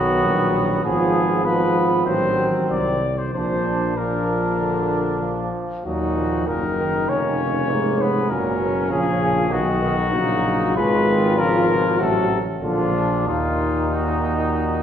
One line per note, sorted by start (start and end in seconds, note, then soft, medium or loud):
0.00 0.26 B1 medium
0.00 0.83 D#3 medium
0.00 0.82 F#3 medium
0.00 0.83 B3 medium
0.00 0.82 F#4 medium
0.24 0.83 A#1 medium
0.84 2.04 G#1 soft
0.84 1.43 F3 medium
0.84 1.44 F3 soft
0.84 1.44 B3 medium
0.84 1.46 G#4 medium
1.44 2.07 F3 soft
1.44 2.08 F3 medium
1.44 2.07 B3 soft
1.44 2.05 B4 medium
2.05 2.47 A1 soft
2.05 3.04 D#3 soft
2.05 3.05 F#3 soft
2.05 3.04 C4 soft
2.05 2.47 C5 medium
2.70 3.30 C2 soft
2.70 3.20 D5 medium
3.18 3.33 C5 medium
3.33 5.50 A#1 soft
3.33 3.93 A#2 soft
3.33 3.93 F3 soft
3.33 3.93 D4 soft
3.33 3.99 C5 medium
3.96 4.56 A#2 soft
3.96 5.51 F3 soft
3.96 5.50 D4 soft
3.96 5.54 A#4 medium
4.59 5.20 D3 medium
5.21 5.84 F3 soft
5.84 6.44 D#2 soft
5.84 6.44 A#2 soft
5.84 6.18 F#3 soft
5.84 6.43 D#4 soft
5.84 6.49 F#4 medium
6.17 6.49 F3 soft
6.47 7.11 F#1 soft
6.47 6.62 A#2 soft
6.47 7.71 D#3 soft
6.47 7.10 D#4 soft
6.47 7.10 A#4 medium
6.79 6.93 D#3 soft
7.08 8.31 F1 soft
7.08 7.72 C#3 soft
7.08 7.72 C#4 soft
7.08 8.03 C#5 medium
7.70 8.32 G#2 soft
7.70 8.30 G#3 soft
7.70 8.02 A#3 soft
8.01 8.30 B3 soft
8.01 8.31 B4 medium
8.30 8.92 F#1 soft
8.30 8.62 A#2 soft
8.30 8.93 F#3 soft
8.30 9.52 C#4 soft
8.30 8.90 A#4 medium
8.60 8.91 B2 soft
8.90 9.53 A#1 soft
8.90 9.52 C#3 soft
8.90 9.51 F3 soft
8.90 9.54 G#4 medium
9.51 10.14 B1 medium
9.51 9.81 D#3 soft
9.51 10.16 D#3 soft
9.51 10.12 D#4 soft
9.51 10.76 F#4 medium
9.82 9.96 D#3 soft
10.12 10.75 A#1 medium
10.12 10.75 C#3 medium
10.12 10.45 F#3 soft
10.12 10.77 D#4 soft
10.45 10.79 F#3 medium
10.76 12.02 G#1 medium
10.76 11.09 B2 medium
10.76 11.40 G#3 soft
10.76 12.00 F4 medium
10.76 11.40 B4 medium
11.07 11.38 D#3 medium
11.37 11.67 C#3 medium
11.37 12.01 F3 medium
11.37 12.00 A#4 medium
11.68 11.98 B2 medium
11.98 12.41 A1 medium
11.98 12.39 C3 soft
11.98 12.40 F#3 soft
11.98 12.40 F#4 soft
11.98 12.41 A4 medium
12.60 13.29 A#1 medium
12.60 12.94 D3 medium
12.60 13.24 F3 soft
12.60 13.28 D4 soft
12.60 13.24 F4 medium
12.93 13.25 A#2 medium
13.26 14.83 D#2 soft
13.26 14.83 A#2 soft
13.26 14.83 D#3 soft
13.26 14.83 D#4 soft
13.26 13.97 F4 medium
13.95 14.83 F#4 medium